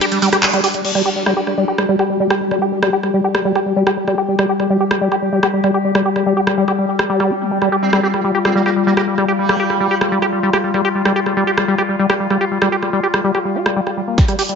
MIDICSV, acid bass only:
0, 0, Header, 1, 2, 480
1, 0, Start_track
1, 0, Tempo, 416667
1, 975, Time_signature, 4, 2, 24, 8
1, 16764, End_track
2, 0, Start_track
2, 0, Title_t, "Acid bass"
2, 0, Program_c, 0, 38
2, 15, Note_on_c, 0, 67, 98
2, 64, Note_off_c, 0, 67, 0
2, 135, Note_on_c, 0, 55, 80
2, 217, Note_off_c, 0, 55, 0
2, 255, Note_on_c, 0, 55, 106
2, 337, Note_off_c, 0, 55, 0
2, 375, Note_on_c, 0, 67, 105
2, 424, Note_off_c, 0, 67, 0
2, 495, Note_on_c, 0, 55, 85
2, 577, Note_off_c, 0, 55, 0
2, 615, Note_on_c, 0, 55, 107
2, 697, Note_off_c, 0, 55, 0
2, 735, Note_on_c, 0, 67, 102
2, 784, Note_off_c, 0, 67, 0
2, 855, Note_on_c, 0, 55, 78
2, 937, Note_off_c, 0, 55, 0
2, 975, Note_on_c, 0, 55, 84
2, 1057, Note_off_c, 0, 55, 0
2, 1095, Note_on_c, 0, 55, 99
2, 1177, Note_off_c, 0, 55, 0
2, 1215, Note_on_c, 0, 67, 99
2, 1264, Note_off_c, 0, 67, 0
2, 1335, Note_on_c, 0, 55, 74
2, 1417, Note_off_c, 0, 55, 0
2, 1455, Note_on_c, 0, 55, 100
2, 1537, Note_off_c, 0, 55, 0
2, 1575, Note_on_c, 0, 67, 96
2, 1624, Note_off_c, 0, 67, 0
2, 1694, Note_on_c, 0, 55, 73
2, 1777, Note_off_c, 0, 55, 0
2, 1815, Note_on_c, 0, 55, 99
2, 1897, Note_off_c, 0, 55, 0
2, 1935, Note_on_c, 0, 67, 99
2, 1984, Note_off_c, 0, 67, 0
2, 2055, Note_on_c, 0, 55, 77
2, 2137, Note_off_c, 0, 55, 0
2, 2175, Note_on_c, 0, 55, 99
2, 2257, Note_off_c, 0, 55, 0
2, 2295, Note_on_c, 0, 67, 100
2, 2344, Note_off_c, 0, 67, 0
2, 2415, Note_on_c, 0, 55, 83
2, 2497, Note_off_c, 0, 55, 0
2, 2535, Note_on_c, 0, 55, 102
2, 2617, Note_off_c, 0, 55, 0
2, 2655, Note_on_c, 0, 67, 101
2, 2704, Note_off_c, 0, 67, 0
2, 2775, Note_on_c, 0, 55, 76
2, 2857, Note_off_c, 0, 55, 0
2, 2895, Note_on_c, 0, 55, 101
2, 2977, Note_off_c, 0, 55, 0
2, 3015, Note_on_c, 0, 67, 98
2, 3064, Note_off_c, 0, 67, 0
2, 3135, Note_on_c, 0, 55, 75
2, 3217, Note_off_c, 0, 55, 0
2, 3255, Note_on_c, 0, 55, 100
2, 3337, Note_off_c, 0, 55, 0
2, 3375, Note_on_c, 0, 67, 100
2, 3424, Note_off_c, 0, 67, 0
2, 3495, Note_on_c, 0, 55, 74
2, 3577, Note_off_c, 0, 55, 0
2, 3616, Note_on_c, 0, 55, 96
2, 3697, Note_off_c, 0, 55, 0
2, 3735, Note_on_c, 0, 67, 99
2, 3784, Note_off_c, 0, 67, 0
2, 3856, Note_on_c, 0, 55, 81
2, 3937, Note_off_c, 0, 55, 0
2, 3975, Note_on_c, 0, 55, 101
2, 4057, Note_off_c, 0, 55, 0
2, 4095, Note_on_c, 0, 67, 100
2, 4144, Note_off_c, 0, 67, 0
2, 4215, Note_on_c, 0, 55, 74
2, 4297, Note_off_c, 0, 55, 0
2, 4335, Note_on_c, 0, 55, 102
2, 4417, Note_off_c, 0, 55, 0
2, 4455, Note_on_c, 0, 67, 102
2, 4504, Note_off_c, 0, 67, 0
2, 4575, Note_on_c, 0, 55, 74
2, 4657, Note_off_c, 0, 55, 0
2, 4695, Note_on_c, 0, 55, 104
2, 4777, Note_off_c, 0, 55, 0
2, 4814, Note_on_c, 0, 67, 101
2, 4864, Note_off_c, 0, 67, 0
2, 4935, Note_on_c, 0, 55, 77
2, 5017, Note_off_c, 0, 55, 0
2, 5055, Note_on_c, 0, 55, 101
2, 5137, Note_off_c, 0, 55, 0
2, 5175, Note_on_c, 0, 67, 100
2, 5224, Note_off_c, 0, 67, 0
2, 5295, Note_on_c, 0, 55, 81
2, 5377, Note_off_c, 0, 55, 0
2, 5415, Note_on_c, 0, 55, 102
2, 5497, Note_off_c, 0, 55, 0
2, 5535, Note_on_c, 0, 67, 101
2, 5584, Note_off_c, 0, 67, 0
2, 5655, Note_on_c, 0, 55, 76
2, 5737, Note_off_c, 0, 55, 0
2, 5775, Note_on_c, 0, 55, 99
2, 5857, Note_off_c, 0, 55, 0
2, 5895, Note_on_c, 0, 67, 102
2, 5944, Note_off_c, 0, 67, 0
2, 6015, Note_on_c, 0, 55, 74
2, 6097, Note_off_c, 0, 55, 0
2, 6135, Note_on_c, 0, 55, 97
2, 6217, Note_off_c, 0, 55, 0
2, 6255, Note_on_c, 0, 67, 103
2, 6304, Note_off_c, 0, 67, 0
2, 6375, Note_on_c, 0, 55, 77
2, 6457, Note_off_c, 0, 55, 0
2, 6495, Note_on_c, 0, 55, 98
2, 6577, Note_off_c, 0, 55, 0
2, 6615, Note_on_c, 0, 67, 100
2, 6664, Note_off_c, 0, 67, 0
2, 6735, Note_on_c, 0, 55, 84
2, 6817, Note_off_c, 0, 55, 0
2, 6855, Note_on_c, 0, 55, 97
2, 6937, Note_off_c, 0, 55, 0
2, 6975, Note_on_c, 0, 67, 100
2, 7024, Note_off_c, 0, 67, 0
2, 7095, Note_on_c, 0, 55, 77
2, 7177, Note_off_c, 0, 55, 0
2, 7215, Note_on_c, 0, 55, 100
2, 7297, Note_off_c, 0, 55, 0
2, 7335, Note_on_c, 0, 67, 101
2, 7384, Note_off_c, 0, 67, 0
2, 7455, Note_on_c, 0, 55, 75
2, 7537, Note_off_c, 0, 55, 0
2, 7575, Note_on_c, 0, 55, 100
2, 7657, Note_off_c, 0, 55, 0
2, 7695, Note_on_c, 0, 67, 99
2, 7744, Note_off_c, 0, 67, 0
2, 7815, Note_on_c, 0, 55, 76
2, 7897, Note_off_c, 0, 55, 0
2, 7935, Note_on_c, 0, 67, 77
2, 8017, Note_off_c, 0, 67, 0
2, 8055, Note_on_c, 0, 55, 76
2, 8104, Note_off_c, 0, 55, 0
2, 8175, Note_on_c, 0, 55, 104
2, 8289, Note_off_c, 0, 55, 0
2, 8295, Note_on_c, 0, 55, 104
2, 8415, Note_on_c, 0, 67, 72
2, 8432, Note_off_c, 0, 55, 0
2, 8535, Note_on_c, 0, 55, 74
2, 8552, Note_off_c, 0, 67, 0
2, 8649, Note_off_c, 0, 55, 0
2, 8655, Note_on_c, 0, 55, 83
2, 8737, Note_off_c, 0, 55, 0
2, 8775, Note_on_c, 0, 55, 101
2, 8857, Note_off_c, 0, 55, 0
2, 8894, Note_on_c, 0, 67, 100
2, 8944, Note_off_c, 0, 67, 0
2, 9015, Note_on_c, 0, 55, 74
2, 9097, Note_off_c, 0, 55, 0
2, 9135, Note_on_c, 0, 55, 99
2, 9217, Note_off_c, 0, 55, 0
2, 9255, Note_on_c, 0, 67, 100
2, 9304, Note_off_c, 0, 67, 0
2, 9375, Note_on_c, 0, 55, 76
2, 9457, Note_off_c, 0, 55, 0
2, 9495, Note_on_c, 0, 55, 99
2, 9577, Note_off_c, 0, 55, 0
2, 9615, Note_on_c, 0, 67, 99
2, 9664, Note_off_c, 0, 67, 0
2, 9734, Note_on_c, 0, 55, 74
2, 9817, Note_off_c, 0, 55, 0
2, 9855, Note_on_c, 0, 55, 99
2, 9937, Note_off_c, 0, 55, 0
2, 9975, Note_on_c, 0, 67, 102
2, 10024, Note_off_c, 0, 67, 0
2, 10095, Note_on_c, 0, 55, 85
2, 10177, Note_off_c, 0, 55, 0
2, 10215, Note_on_c, 0, 55, 104
2, 10297, Note_off_c, 0, 55, 0
2, 10335, Note_on_c, 0, 67, 97
2, 10384, Note_off_c, 0, 67, 0
2, 10455, Note_on_c, 0, 55, 78
2, 10537, Note_off_c, 0, 55, 0
2, 10575, Note_on_c, 0, 55, 101
2, 10657, Note_off_c, 0, 55, 0
2, 10694, Note_on_c, 0, 67, 102
2, 10744, Note_off_c, 0, 67, 0
2, 10814, Note_on_c, 0, 55, 79
2, 10897, Note_off_c, 0, 55, 0
2, 10935, Note_on_c, 0, 55, 100
2, 11017, Note_off_c, 0, 55, 0
2, 11055, Note_on_c, 0, 67, 98
2, 11104, Note_off_c, 0, 67, 0
2, 11175, Note_on_c, 0, 55, 77
2, 11257, Note_off_c, 0, 55, 0
2, 11295, Note_on_c, 0, 55, 98
2, 11377, Note_off_c, 0, 55, 0
2, 11415, Note_on_c, 0, 67, 99
2, 11464, Note_off_c, 0, 67, 0
2, 11535, Note_on_c, 0, 55, 78
2, 11617, Note_off_c, 0, 55, 0
2, 11655, Note_on_c, 0, 55, 100
2, 11737, Note_off_c, 0, 55, 0
2, 11775, Note_on_c, 0, 67, 104
2, 11824, Note_off_c, 0, 67, 0
2, 11895, Note_on_c, 0, 55, 76
2, 11977, Note_off_c, 0, 55, 0
2, 12015, Note_on_c, 0, 55, 103
2, 12097, Note_off_c, 0, 55, 0
2, 12135, Note_on_c, 0, 67, 104
2, 12184, Note_off_c, 0, 67, 0
2, 12255, Note_on_c, 0, 55, 74
2, 12337, Note_off_c, 0, 55, 0
2, 12375, Note_on_c, 0, 55, 101
2, 12457, Note_off_c, 0, 55, 0
2, 12495, Note_on_c, 0, 67, 103
2, 12544, Note_off_c, 0, 67, 0
2, 12615, Note_on_c, 0, 55, 77
2, 12697, Note_off_c, 0, 55, 0
2, 12735, Note_on_c, 0, 55, 102
2, 12817, Note_off_c, 0, 55, 0
2, 12854, Note_on_c, 0, 67, 99
2, 12904, Note_off_c, 0, 67, 0
2, 12975, Note_on_c, 0, 55, 84
2, 13057, Note_off_c, 0, 55, 0
2, 13095, Note_on_c, 0, 55, 99
2, 13177, Note_off_c, 0, 55, 0
2, 13215, Note_on_c, 0, 67, 103
2, 13264, Note_off_c, 0, 67, 0
2, 13335, Note_on_c, 0, 55, 76
2, 13417, Note_off_c, 0, 55, 0
2, 13455, Note_on_c, 0, 55, 96
2, 13537, Note_off_c, 0, 55, 0
2, 13575, Note_on_c, 0, 67, 103
2, 13624, Note_off_c, 0, 67, 0
2, 13695, Note_on_c, 0, 55, 74
2, 13777, Note_off_c, 0, 55, 0
2, 13815, Note_on_c, 0, 55, 98
2, 13897, Note_off_c, 0, 55, 0
2, 13935, Note_on_c, 0, 67, 100
2, 13984, Note_off_c, 0, 67, 0
2, 14055, Note_on_c, 0, 55, 78
2, 14137, Note_off_c, 0, 55, 0
2, 14175, Note_on_c, 0, 55, 96
2, 14257, Note_off_c, 0, 55, 0
2, 14294, Note_on_c, 0, 67, 102
2, 14344, Note_off_c, 0, 67, 0
2, 14415, Note_on_c, 0, 55, 85
2, 14497, Note_off_c, 0, 55, 0
2, 14535, Note_on_c, 0, 55, 102
2, 14617, Note_off_c, 0, 55, 0
2, 14655, Note_on_c, 0, 67, 103
2, 14704, Note_off_c, 0, 67, 0
2, 14775, Note_on_c, 0, 55, 74
2, 14857, Note_off_c, 0, 55, 0
2, 14895, Note_on_c, 0, 55, 101
2, 14977, Note_off_c, 0, 55, 0
2, 15015, Note_on_c, 0, 67, 99
2, 15064, Note_off_c, 0, 67, 0
2, 15135, Note_on_c, 0, 55, 75
2, 15217, Note_off_c, 0, 55, 0
2, 15255, Note_on_c, 0, 55, 100
2, 15337, Note_off_c, 0, 55, 0
2, 15374, Note_on_c, 0, 67, 96
2, 15424, Note_off_c, 0, 67, 0
2, 15495, Note_on_c, 0, 55, 76
2, 15615, Note_on_c, 0, 67, 104
2, 15632, Note_off_c, 0, 55, 0
2, 15729, Note_off_c, 0, 67, 0
2, 15735, Note_on_c, 0, 55, 75
2, 15849, Note_off_c, 0, 55, 0
2, 15855, Note_on_c, 0, 55, 101
2, 15904, Note_off_c, 0, 55, 0
2, 15975, Note_on_c, 0, 67, 78
2, 16024, Note_off_c, 0, 67, 0
2, 16095, Note_on_c, 0, 55, 78
2, 16144, Note_off_c, 0, 55, 0
2, 16215, Note_on_c, 0, 58, 79
2, 16329, Note_off_c, 0, 58, 0
2, 16335, Note_on_c, 0, 55, 88
2, 16417, Note_off_c, 0, 55, 0
2, 16455, Note_on_c, 0, 55, 103
2, 16537, Note_off_c, 0, 55, 0
2, 16575, Note_on_c, 0, 67, 102
2, 16624, Note_off_c, 0, 67, 0
2, 16695, Note_on_c, 0, 55, 76
2, 16764, Note_off_c, 0, 55, 0
2, 16764, End_track
0, 0, End_of_file